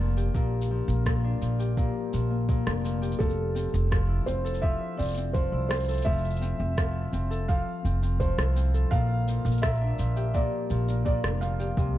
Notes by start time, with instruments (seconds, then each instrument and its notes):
Already playing: upright bass F1, harp A#2 A#3 C4 D4 G4
0.00 harp F3
0.17 harp G4, cabasa
0.35 upright bass A#1, harp A#2, kick, cabasa
0.62 cabasa
0.71 harp F3
0.88 upright bass A#1, harp A#3, cabasa
1.06 harp A#2, kick, cross-stick, cabasa
1.24 harp D4
1.41 upright bass A#1, harp F3, cabasa
1.59 harp G4, cabasa
1.77 harp A#2, kick, cabasa
2.13 upright bass A#1, harp F3, cabasa
2.30 harp A#3
2.49 harp A#2, kick, cabasa
2.66 upright bass F1, harp D4, cross-stick
2.84 harp F3, cabasa
3.02 harp G4, cabasa
3.12 cabasa
3.19 upright bass F1, harp F3, felt piano A4, kick, cabasa
3.30 cabasa
3.55 harp C4, cabasa
3.73 upright bass F1, harp C4, cabasa
3.91 harp F3, kick, cross-stick, cabasa
4.08 harp E4
4.26 upright bass F1, harp C4, felt piano C5, cabasa
4.44 harp A4, cabasa
4.54 cabasa
4.62 harp F3, felt piano E5, kick
4.97 upright bass F1, harp C4, felt piano D5, cabasa
5.02 cabasa
5.05 cabasa
5.08 cabasa
5.11 cabasa
5.14 harp C4, cabasa
5.17 cabasa
5.33 harp F3, felt piano C5, kick, cabasa
5.52 upright bass C2, harp E4
5.69 harp C4, felt piano C5, cross-stick, cabasa
5.75 cabasa
5.80 cabasa
5.84 harp A4, cabasa
5.89 cabasa
5.93 cabasa
5.97 cabasa
6.02 harp F3, felt piano E5, kick, cabasa
6.06 upright bass F1
6.13 cabasa
6.18 cabasa
6.25 cabasa
6.30 cabasa
6.36 cabasa
6.41 harp C4, cabasa
6.59 upright bass F1, harp C4
6.77 harp F3, kick, cross-stick, cabasa
7.13 upright bass F1, harp C4, cabasa
7.30 harp A4, cabasa
7.48 harp F3, felt piano F5, kick, cabasa
7.85 upright bass F1, harp C4, cabasa
8.03 harp C4, cabasa
8.20 harp F3, felt piano C5, kick, cabasa
8.38 upright bass C2, harp E4, cross-stick
8.56 harp C4, cabasa
8.74 harp A4, cabasa
8.91 upright bass A#1, harp A#2, felt piano F5, kick, cabasa
9.28 harp F3, cabasa
9.45 upright bass A#1, harp A#3, cabasa
9.52 cabasa
9.57 cabasa
9.62 harp A#2, felt piano E5, kick, cross-stick, cabasa
9.69 cabasa
9.75 cabasa
9.81 harp D4
9.99 upright bass A#1, harp F3, cabasa
10.16 harp G4, cabasa
10.34 harp A#2, felt piano D5, kick, cabasa
10.70 upright bass A#1, harp F3, cabasa
10.88 harp A#3, cabasa
11.05 harp A#2, felt piano D5, kick, cabasa
11.24 upright bass F1, harp D4, cross-stick
11.41 harp F3, felt piano F5, cabasa
11.59 harp G4, cabasa
11.77 upright bass C2, harp C3, kick, cabasa